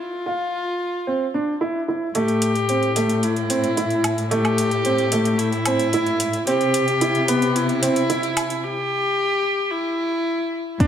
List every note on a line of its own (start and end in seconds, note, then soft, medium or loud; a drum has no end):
0.00 1.61 F4 medium
0.26 0.61 F4 medium
1.07 1.25 C4 medium
1.34 1.52 D4 medium
1.61 1.79 E4 medium
1.88 2.06 E4 medium
2.15 6.45 A2 medium
2.15 2.50 A3 medium
2.15 3.26 G4 loud
2.15 closed hi-hat soft
2.28 closed hi-hat soft
2.42 closed hi-hat medium
2.55 closed hi-hat soft
2.69 2.87 C4 medium
2.69 closed hi-hat soft
2.83 closed hi-hat soft
2.96 3.31 A3 medium
2.96 closed hi-hat medium
3.09 closed hi-hat soft
3.23 4.32 E4 loud
3.23 closed hi-hat soft
3.36 closed hi-hat soft
3.50 3.68 C4 medium
3.50 closed hi-hat medium
3.64 closed hi-hat soft
3.77 4.13 E4 medium
3.77 closed hi-hat soft
3.90 closed hi-hat soft
4.04 closed hi-hat medium
4.04 low woodblock medium
4.18 closed hi-hat soft
4.31 4.66 A3 medium
4.31 5.40 G4 loud
4.31 closed hi-hat soft
4.45 closed hi-hat soft
4.45 low woodblock medium
4.58 closed hi-hat medium
4.71 closed hi-hat soft
4.85 5.03 C4 medium
4.85 closed hi-hat soft
4.98 closed hi-hat soft
5.12 5.48 A3 medium
5.12 closed hi-hat medium
5.25 closed hi-hat soft
5.38 6.47 E4 loud
5.38 closed hi-hat soft
5.52 closed hi-hat soft
5.66 5.84 C4 medium
5.66 closed hi-hat medium
5.66 low woodblock medium
5.79 closed hi-hat soft
5.93 6.29 E4 medium
5.93 closed hi-hat soft
6.06 closed hi-hat soft
6.20 closed hi-hat medium
6.33 closed hi-hat soft
6.47 8.64 C3 medium
6.47 6.83 C4 medium
6.47 7.57 G4 loud
6.47 closed hi-hat soft
6.61 closed hi-hat soft
6.74 closed hi-hat medium
6.88 closed hi-hat soft
7.01 7.19 E4 medium
7.01 closed hi-hat soft
7.15 closed hi-hat soft
7.28 7.64 B3 medium
7.28 closed hi-hat medium
7.42 closed hi-hat soft
7.56 8.65 E4 loud
7.56 closed hi-hat soft
7.69 closed hi-hat soft
7.82 8.00 C4 medium
7.82 closed hi-hat medium
7.96 closed hi-hat soft
8.10 8.45 E4 medium
8.10 closed hi-hat soft
8.23 closed hi-hat soft
8.37 closed hi-hat medium
8.37 low woodblock medium
8.50 closed hi-hat soft
8.64 9.73 G4 loud
9.72 10.80 E4 medium
10.80 10.87 A2 medium
10.80 10.87 D4 loud
10.80 kick medium
10.80 closed hi-hat soft